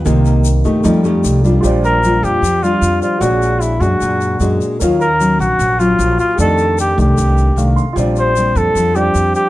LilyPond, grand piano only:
<<
  \new Staff \with { instrumentName = "Grand piano" } { \time 4/4 \key bes \major \tempo 4 = 152 r1 | <f' g' c'' d''>2.~ <f' g' c'' d''>8 <f' g' c'' d''>8 | <fis' aes' cis'' d''>1 | <bes' des'' f''>1 |
<ees' g' a' d''>1 | <f' g' c'' d''>2~ <f' g' c'' d''>8 <f' g' c'' d''>4. | }
  \new Staff \with { instrumentName = "Grand piano" } { \time 4/4 \key bes \major <ees bes>8 r4. <g a ees'>8 r4. | r1 | r1 | r1 |
r2. f''8 c'''8 | r1 | }
>>